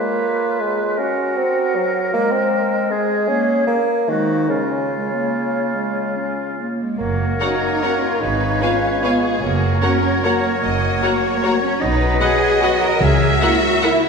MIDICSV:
0, 0, Header, 1, 12, 480
1, 0, Start_track
1, 0, Key_signature, -5, "major"
1, 0, Tempo, 385852
1, 1219, Time_signature, 3, 2, 24, 8
1, 4569, Tempo, 415225
1, 8401, Key_signature, 6, "major"
1, 9369, Tempo, 399734
1, 16891, End_track
2, 0, Start_track
2, 0, Title_t, "Violin section"
2, 0, Program_c, 0, 48
2, 8876, Note_on_c, 0, 78, 46
2, 8879, Note_on_c, 0, 82, 45
2, 8968, Note_off_c, 0, 78, 0
2, 8972, Note_off_c, 0, 82, 0
2, 9380, Note_on_c, 0, 78, 42
2, 9382, Note_on_c, 0, 82, 42
2, 9476, Note_off_c, 0, 78, 0
2, 9478, Note_off_c, 0, 82, 0
2, 10331, Note_on_c, 0, 77, 44
2, 10333, Note_on_c, 0, 80, 45
2, 10427, Note_off_c, 0, 77, 0
2, 10429, Note_off_c, 0, 80, 0
2, 10836, Note_on_c, 0, 77, 43
2, 10842, Note_on_c, 0, 80, 44
2, 10932, Note_off_c, 0, 77, 0
2, 10938, Note_off_c, 0, 80, 0
2, 11765, Note_on_c, 0, 78, 48
2, 11766, Note_on_c, 0, 82, 50
2, 11862, Note_off_c, 0, 78, 0
2, 11862, Note_off_c, 0, 82, 0
2, 12273, Note_on_c, 0, 78, 45
2, 12274, Note_on_c, 0, 82, 46
2, 12369, Note_off_c, 0, 78, 0
2, 12370, Note_off_c, 0, 82, 0
2, 13219, Note_on_c, 0, 78, 52
2, 13224, Note_on_c, 0, 82, 49
2, 13315, Note_off_c, 0, 78, 0
2, 13320, Note_off_c, 0, 82, 0
2, 13713, Note_on_c, 0, 82, 48
2, 13723, Note_on_c, 0, 78, 45
2, 13809, Note_off_c, 0, 82, 0
2, 13819, Note_off_c, 0, 78, 0
2, 14638, Note_on_c, 0, 78, 51
2, 14734, Note_off_c, 0, 78, 0
2, 15137, Note_on_c, 0, 78, 52
2, 15142, Note_off_c, 0, 78, 0
2, 15142, Note_on_c, 0, 78, 49
2, 15238, Note_off_c, 0, 78, 0
2, 16082, Note_on_c, 0, 78, 54
2, 16083, Note_off_c, 0, 78, 0
2, 16083, Note_on_c, 0, 78, 57
2, 16179, Note_off_c, 0, 78, 0
2, 16564, Note_on_c, 0, 78, 51
2, 16567, Note_off_c, 0, 78, 0
2, 16567, Note_on_c, 0, 78, 53
2, 16663, Note_off_c, 0, 78, 0
2, 16891, End_track
3, 0, Start_track
3, 0, Title_t, "Flute"
3, 0, Program_c, 1, 73
3, 0, Note_on_c, 1, 73, 45
3, 1228, Note_on_c, 1, 78, 46
3, 1247, Note_off_c, 1, 73, 0
3, 2653, Note_on_c, 1, 75, 49
3, 2671, Note_off_c, 1, 78, 0
3, 4088, Note_on_c, 1, 73, 48
3, 4106, Note_off_c, 1, 75, 0
3, 4713, Note_off_c, 1, 73, 0
3, 5048, Note_on_c, 1, 72, 43
3, 5518, Note_on_c, 1, 73, 44
3, 5535, Note_off_c, 1, 72, 0
3, 8173, Note_off_c, 1, 73, 0
3, 8401, Note_on_c, 1, 78, 46
3, 9846, Note_on_c, 1, 77, 50
3, 9864, Note_off_c, 1, 78, 0
3, 11273, Note_off_c, 1, 77, 0
3, 11280, Note_on_c, 1, 78, 49
3, 13894, Note_off_c, 1, 78, 0
3, 14158, Note_on_c, 1, 78, 57
3, 16664, Note_off_c, 1, 78, 0
3, 16891, End_track
4, 0, Start_track
4, 0, Title_t, "Violin section"
4, 0, Program_c, 2, 48
4, 8884, Note_on_c, 2, 70, 57
4, 9795, Note_off_c, 2, 70, 0
4, 9841, Note_on_c, 2, 71, 52
4, 10308, Note_off_c, 2, 71, 0
4, 10312, Note_on_c, 2, 73, 54
4, 10810, Note_on_c, 2, 68, 56
4, 10815, Note_off_c, 2, 73, 0
4, 11761, Note_off_c, 2, 68, 0
4, 11764, Note_on_c, 2, 70, 54
4, 12253, Note_off_c, 2, 70, 0
4, 12264, Note_on_c, 2, 73, 59
4, 12728, Note_on_c, 2, 75, 59
4, 12733, Note_off_c, 2, 73, 0
4, 13208, Note_off_c, 2, 75, 0
4, 13215, Note_on_c, 2, 73, 66
4, 14156, Note_on_c, 2, 71, 62
4, 14166, Note_off_c, 2, 73, 0
4, 14636, Note_off_c, 2, 71, 0
4, 14638, Note_on_c, 2, 75, 75
4, 15581, Note_off_c, 2, 75, 0
4, 15593, Note_on_c, 2, 76, 76
4, 16891, Note_off_c, 2, 76, 0
4, 16891, End_track
5, 0, Start_track
5, 0, Title_t, "Viola section"
5, 0, Program_c, 3, 48
5, 8880, Note_on_c, 3, 73, 43
5, 8883, Note_on_c, 3, 70, 43
5, 8972, Note_off_c, 3, 73, 0
5, 8975, Note_off_c, 3, 70, 0
5, 9363, Note_on_c, 3, 70, 41
5, 9365, Note_on_c, 3, 73, 42
5, 9459, Note_off_c, 3, 70, 0
5, 9461, Note_off_c, 3, 73, 0
5, 10314, Note_on_c, 3, 73, 46
5, 10315, Note_on_c, 3, 71, 44
5, 10410, Note_off_c, 3, 73, 0
5, 10411, Note_off_c, 3, 71, 0
5, 10810, Note_on_c, 3, 71, 44
5, 10811, Note_on_c, 3, 73, 46
5, 10906, Note_off_c, 3, 71, 0
5, 10907, Note_off_c, 3, 73, 0
5, 11767, Note_on_c, 3, 70, 48
5, 11767, Note_on_c, 3, 73, 49
5, 11863, Note_off_c, 3, 70, 0
5, 11863, Note_off_c, 3, 73, 0
5, 12259, Note_on_c, 3, 70, 46
5, 12261, Note_on_c, 3, 73, 46
5, 12355, Note_off_c, 3, 70, 0
5, 12357, Note_off_c, 3, 73, 0
5, 13210, Note_on_c, 3, 70, 51
5, 13214, Note_on_c, 3, 73, 47
5, 13306, Note_off_c, 3, 70, 0
5, 13310, Note_off_c, 3, 73, 0
5, 13690, Note_on_c, 3, 70, 48
5, 13693, Note_on_c, 3, 73, 51
5, 13786, Note_off_c, 3, 70, 0
5, 13789, Note_off_c, 3, 73, 0
5, 14631, Note_on_c, 3, 75, 52
5, 14633, Note_on_c, 3, 71, 52
5, 14727, Note_off_c, 3, 75, 0
5, 14729, Note_off_c, 3, 71, 0
5, 15128, Note_on_c, 3, 71, 52
5, 15131, Note_on_c, 3, 75, 53
5, 15224, Note_off_c, 3, 71, 0
5, 15227, Note_off_c, 3, 75, 0
5, 16079, Note_on_c, 3, 70, 57
5, 16084, Note_on_c, 3, 76, 59
5, 16175, Note_off_c, 3, 70, 0
5, 16180, Note_off_c, 3, 76, 0
5, 16578, Note_on_c, 3, 76, 55
5, 16579, Note_on_c, 3, 70, 56
5, 16674, Note_off_c, 3, 76, 0
5, 16675, Note_off_c, 3, 70, 0
5, 16891, End_track
6, 0, Start_track
6, 0, Title_t, "Oboe"
6, 0, Program_c, 4, 68
6, 0, Note_on_c, 4, 71, 42
6, 1213, Note_on_c, 4, 70, 48
6, 1231, Note_off_c, 4, 71, 0
6, 3623, Note_on_c, 4, 68, 52
6, 3642, Note_off_c, 4, 70, 0
6, 4709, Note_off_c, 4, 68, 0
6, 5061, Note_on_c, 4, 66, 44
6, 5525, Note_on_c, 4, 65, 44
6, 5542, Note_off_c, 4, 66, 0
6, 8177, Note_off_c, 4, 65, 0
6, 8406, Note_on_c, 4, 73, 48
6, 11240, Note_off_c, 4, 73, 0
6, 11297, Note_on_c, 4, 73, 49
6, 14158, Note_on_c, 4, 75, 54
6, 14176, Note_off_c, 4, 73, 0
6, 15599, Note_off_c, 4, 75, 0
6, 15605, Note_on_c, 4, 76, 59
6, 16695, Note_off_c, 4, 76, 0
6, 16891, End_track
7, 0, Start_track
7, 0, Title_t, "French horn section"
7, 0, Program_c, 5, 60
7, 8893, Note_on_c, 5, 61, 42
7, 8893, Note_on_c, 5, 66, 44
7, 9067, Note_off_c, 5, 61, 0
7, 9067, Note_off_c, 5, 66, 0
7, 9380, Note_on_c, 5, 61, 44
7, 9385, Note_on_c, 5, 66, 41
7, 9549, Note_off_c, 5, 61, 0
7, 9552, Note_off_c, 5, 66, 0
7, 10324, Note_on_c, 5, 59, 45
7, 10332, Note_on_c, 5, 65, 45
7, 10504, Note_off_c, 5, 59, 0
7, 10509, Note_off_c, 5, 65, 0
7, 10812, Note_on_c, 5, 65, 44
7, 10813, Note_on_c, 5, 59, 44
7, 10983, Note_off_c, 5, 65, 0
7, 10984, Note_off_c, 5, 59, 0
7, 11773, Note_on_c, 5, 58, 47
7, 11774, Note_on_c, 5, 66, 48
7, 11951, Note_off_c, 5, 58, 0
7, 11952, Note_off_c, 5, 66, 0
7, 12287, Note_on_c, 5, 58, 48
7, 12293, Note_on_c, 5, 66, 46
7, 12452, Note_off_c, 5, 58, 0
7, 12457, Note_off_c, 5, 66, 0
7, 13212, Note_on_c, 5, 58, 50
7, 13212, Note_on_c, 5, 66, 50
7, 13389, Note_off_c, 5, 58, 0
7, 13389, Note_off_c, 5, 66, 0
7, 13707, Note_on_c, 5, 66, 49
7, 13708, Note_on_c, 5, 58, 47
7, 13874, Note_off_c, 5, 58, 0
7, 13874, Note_off_c, 5, 66, 0
7, 14637, Note_on_c, 5, 66, 54
7, 14640, Note_on_c, 5, 59, 54
7, 14817, Note_off_c, 5, 66, 0
7, 14820, Note_off_c, 5, 59, 0
7, 15122, Note_on_c, 5, 59, 55
7, 15127, Note_on_c, 5, 66, 53
7, 15294, Note_off_c, 5, 59, 0
7, 15298, Note_off_c, 5, 66, 0
7, 16092, Note_on_c, 5, 64, 58
7, 16094, Note_on_c, 5, 58, 56
7, 16269, Note_off_c, 5, 64, 0
7, 16271, Note_off_c, 5, 58, 0
7, 16584, Note_on_c, 5, 64, 56
7, 16589, Note_on_c, 5, 58, 55
7, 16750, Note_off_c, 5, 64, 0
7, 16754, Note_off_c, 5, 58, 0
7, 16891, End_track
8, 0, Start_track
8, 0, Title_t, "Cello section"
8, 0, Program_c, 6, 48
8, 8172, Note_on_c, 6, 56, 52
8, 8385, Note_off_c, 6, 56, 0
8, 8407, Note_on_c, 6, 58, 62
8, 8879, Note_off_c, 6, 58, 0
8, 8881, Note_on_c, 6, 63, 66
8, 9358, Note_on_c, 6, 61, 60
8, 9361, Note_off_c, 6, 63, 0
8, 9604, Note_off_c, 6, 61, 0
8, 9605, Note_on_c, 6, 65, 64
8, 9831, Note_on_c, 6, 63, 58
8, 9837, Note_off_c, 6, 65, 0
8, 10312, Note_off_c, 6, 63, 0
8, 10318, Note_on_c, 6, 61, 58
8, 10810, Note_on_c, 6, 59, 67
8, 10818, Note_off_c, 6, 61, 0
8, 11272, Note_off_c, 6, 59, 0
8, 11280, Note_on_c, 6, 58, 69
8, 11752, Note_off_c, 6, 58, 0
8, 11756, Note_on_c, 6, 61, 66
8, 12259, Note_off_c, 6, 61, 0
8, 12263, Note_on_c, 6, 58, 64
8, 12719, Note_off_c, 6, 58, 0
8, 12733, Note_on_c, 6, 58, 72
8, 13914, Note_off_c, 6, 58, 0
8, 13938, Note_on_c, 6, 61, 71
8, 14154, Note_on_c, 6, 63, 79
8, 14159, Note_off_c, 6, 61, 0
8, 14635, Note_off_c, 6, 63, 0
8, 14636, Note_on_c, 6, 68, 85
8, 15125, Note_off_c, 6, 68, 0
8, 15134, Note_on_c, 6, 66, 78
8, 15373, Note_off_c, 6, 66, 0
8, 15375, Note_on_c, 6, 70, 80
8, 15602, Note_off_c, 6, 70, 0
8, 15605, Note_on_c, 6, 68, 73
8, 16077, Note_on_c, 6, 66, 80
8, 16081, Note_off_c, 6, 68, 0
8, 16566, Note_off_c, 6, 66, 0
8, 16584, Note_on_c, 6, 64, 82
8, 16891, Note_off_c, 6, 64, 0
8, 16891, End_track
9, 0, Start_track
9, 0, Title_t, "Clarinet"
9, 0, Program_c, 7, 71
9, 0, Note_on_c, 7, 65, 51
9, 1179, Note_off_c, 7, 65, 0
9, 1230, Note_on_c, 7, 66, 57
9, 2667, Note_on_c, 7, 56, 62
9, 2686, Note_off_c, 7, 66, 0
9, 4087, Note_off_c, 7, 56, 0
9, 4094, Note_on_c, 7, 58, 58
9, 4704, Note_off_c, 7, 58, 0
9, 5055, Note_on_c, 7, 56, 51
9, 5487, Note_off_c, 7, 56, 0
9, 5525, Note_on_c, 7, 61, 48
9, 5945, Note_off_c, 7, 61, 0
9, 6016, Note_on_c, 7, 56, 49
9, 6242, Note_off_c, 7, 56, 0
9, 6252, Note_on_c, 7, 58, 50
9, 6959, Note_on_c, 7, 56, 44
9, 6976, Note_off_c, 7, 58, 0
9, 7438, Note_off_c, 7, 56, 0
9, 7448, Note_on_c, 7, 61, 45
9, 7929, Note_off_c, 7, 61, 0
9, 7953, Note_on_c, 7, 58, 38
9, 8401, Note_off_c, 7, 58, 0
9, 8408, Note_on_c, 7, 70, 50
9, 9833, Note_on_c, 7, 71, 51
9, 9851, Note_off_c, 7, 70, 0
9, 11288, Note_on_c, 7, 70, 52
9, 11306, Note_off_c, 7, 71, 0
9, 13955, Note_off_c, 7, 70, 0
9, 14159, Note_on_c, 7, 71, 58
9, 15610, Note_on_c, 7, 70, 60
9, 15628, Note_off_c, 7, 71, 0
9, 16719, Note_off_c, 7, 70, 0
9, 16891, End_track
10, 0, Start_track
10, 0, Title_t, "Bassoon"
10, 0, Program_c, 8, 70
10, 0, Note_on_c, 8, 58, 68
10, 754, Note_on_c, 8, 56, 64
10, 773, Note_off_c, 8, 58, 0
10, 1225, Note_on_c, 8, 61, 70
10, 1244, Note_off_c, 8, 56, 0
10, 1695, Note_on_c, 8, 60, 71
10, 1713, Note_off_c, 8, 61, 0
10, 2183, Note_on_c, 8, 54, 70
10, 2202, Note_off_c, 8, 60, 0
10, 2646, Note_off_c, 8, 54, 0
10, 2654, Note_on_c, 8, 58, 86
10, 2888, Note_on_c, 8, 60, 73
10, 2907, Note_off_c, 8, 58, 0
10, 3617, Note_on_c, 8, 56, 76
10, 3635, Note_off_c, 8, 60, 0
10, 4082, Note_on_c, 8, 61, 76
10, 4101, Note_off_c, 8, 56, 0
10, 4559, Note_off_c, 8, 61, 0
10, 4567, Note_on_c, 8, 58, 73
10, 5047, Note_on_c, 8, 51, 64
10, 5064, Note_off_c, 8, 58, 0
10, 5512, Note_on_c, 8, 49, 64
10, 5529, Note_off_c, 8, 51, 0
10, 8170, Note_off_c, 8, 49, 0
10, 8392, Note_on_c, 8, 58, 51
10, 9833, Note_on_c, 8, 56, 50
10, 9851, Note_off_c, 8, 58, 0
10, 11275, Note_off_c, 8, 56, 0
10, 11282, Note_on_c, 8, 54, 55
10, 14114, Note_off_c, 8, 54, 0
10, 14161, Note_on_c, 8, 54, 59
10, 16666, Note_off_c, 8, 54, 0
10, 16891, End_track
11, 0, Start_track
11, 0, Title_t, "Timpani"
11, 0, Program_c, 10, 47
11, 15585, Note_on_c, 10, 49, 71
11, 16275, Note_off_c, 10, 49, 0
11, 16891, End_track
12, 0, Start_track
12, 0, Title_t, "Double bass section"
12, 0, Program_c, 11, 48
12, 8392, Note_on_c, 11, 30, 54
12, 8789, Note_off_c, 11, 30, 0
12, 9835, Note_on_c, 11, 32, 56
12, 10230, Note_off_c, 11, 32, 0
12, 11282, Note_on_c, 11, 30, 56
12, 11679, Note_off_c, 11, 30, 0
12, 12728, Note_on_c, 11, 30, 61
12, 13125, Note_off_c, 11, 30, 0
12, 14156, Note_on_c, 11, 35, 66
12, 14552, Note_off_c, 11, 35, 0
12, 15598, Note_on_c, 11, 37, 68
12, 15993, Note_off_c, 11, 37, 0
12, 16891, End_track
0, 0, End_of_file